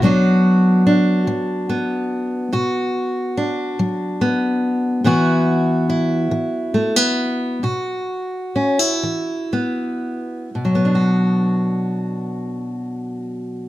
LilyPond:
\new Staff \with { instrumentName = "Steel-string acoustic guitar" } { \time 6/8 \key b \minor \tempo 4. = 47 << { <fis b d' fis'>4 d'4 b4 | fis'4 d'4 b4 | <e b e' fis'>4 e'4 a16 b8. | fis'4 cis'16 e'8. b4 |
<fis b d' fis'>2. | } \\ { b,4 r8 fis4 r8 | b,4 r8 fis4 r8 | b,4 r8 e4 r8 | b,4 r8 e4 r8 |
b,2. | } >> }